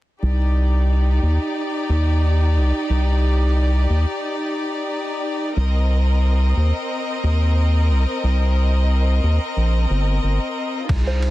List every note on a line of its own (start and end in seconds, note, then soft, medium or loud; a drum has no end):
0.23 1.20 C2 loud
0.23 5.52 D#4 medium
0.23 5.52 G4 medium
0.23 5.52 D5 medium
1.23 1.38 D#2 medium
1.89 2.58 D#2 medium
2.57 2.72 C2 medium
2.90 3.87 C2 medium
3.90 4.05 D#2 medium
5.56 6.53 C2 loud
5.56 10.85 C4 medium
5.56 10.85 A#4 medium
5.56 10.85 D#5 medium
6.57 6.72 D#2 loud
7.24 7.92 D#2 medium
7.90 8.06 C2 medium
8.24 9.20 C2 medium
9.23 9.39 D#2 medium
9.57 9.86 A#1 medium
9.90 10.19 G1 loud
10.23 10.39 G1 medium
10.89 11.30 C2 medium
10.89 11.30 D#4 medium
10.89 11.30 F4 medium
10.89 11.30 G#4 medium
10.89 kick loud
10.89 ride medium
11.07 11.30 C5 medium
11.22 ride medium